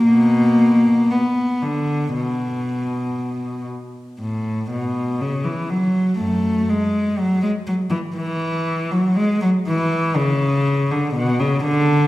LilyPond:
\new Staff \with { instrumentName = "Cello" } { \clef bass \time 4/4 \key b \minor \tempo 4 = 60 <b, ais>4 b8 d8 b,4. r8 | \key fis \minor a,8 b,8 cis16 e16 fis8 <fis, a>8 gis8 fis16 gis16 fis16 e16 | e8. fis16 gis16 fis16 e8 cis8. d16 b,16 cis16 d8 | }